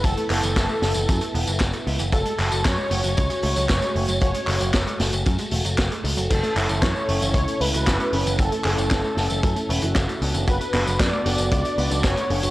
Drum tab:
CC |----------------|----------------|----------------|x---------------|
HH |xxoxx-oxxxoxxxox|xxoxx-oxxxoxxxox|xxoxxxoxxxoxxxox|xxoxx-oxxxoxxxox|
TB |xx-xxx-xxx-xxx-x|xx-x-x-xxx-xxx-x|xx-xxx-xxx-xxx-x|xx-xxx-xxx-xxx-x|
CP |--x-x-------x---|--x-x-------x---|--x-x-------x---|--x-x-------x---|
SD |----o-o-----o---|----o-------o---|----o-o-----o---|----o-------o---|
BD |o---o---o---o---|o---o---o---o---|o---o---o---o---|o---o---o---o---|

CC |----------------|----------------|
HH |xxoxx-oxxxoxxxox|xxoxx-oxxxoxxxox|
TB |-x-xxx-xxx-xxx-x|xx-xxx-xxx-xxx-x|
CP |--x-x-------x---|--x-x-------x---|
SD |----o-o-----o---|----o-------o---|
BD |o---o---o---o---|o---o---o---o---|